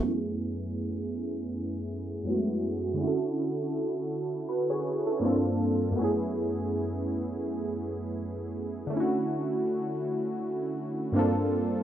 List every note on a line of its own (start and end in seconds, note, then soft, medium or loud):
0.00 2.19 F#2 medium
0.00 2.20 A3 medium
0.00 2.22 B3 medium
0.05 2.23 C#4 medium
0.05 2.24 E4 medium
0.11 2.26 G#4 medium
2.23 2.99 F#2 medium
2.23 2.33 G#3 soft
2.23 3.00 B3 soft
2.23 2.96 C#4 medium
2.29 3.03 A3 soft
2.29 2.99 E4 soft
2.29 3.02 F#4 medium
2.94 5.15 D3 medium
2.94 5.17 C#4 medium
3.01 4.46 E4 medium
3.01 4.47 F#4 medium
3.07 4.49 A4 medium
4.49 4.69 F#4 soft
4.49 4.68 B4 medium
4.70 5.05 G#4 medium
4.70 5.05 C#5 medium
5.07 5.42 E4 soft
5.07 5.25 A4 medium
5.20 5.95 G2 medium
5.20 5.96 A#3 medium
5.20 5.97 C4 medium
5.24 5.97 D4 medium
5.24 5.98 F4 medium
5.24 5.99 A4 medium
5.91 8.86 F#2 medium
5.91 8.87 A3 medium
5.96 8.89 B3 medium
5.96 8.90 C#4 medium
6.01 8.91 E4 medium
6.01 8.93 G#4 medium
8.87 11.08 D3 medium
8.87 11.10 A3 medium
8.93 11.11 C#4 medium
8.93 11.13 E4 medium
9.00 11.15 F#4 medium
11.12 11.83 G2 medium
11.12 11.83 A#3 medium
11.12 11.83 C4 medium
11.12 11.83 D4 medium
11.17 11.83 F4 medium
11.17 11.83 A4 medium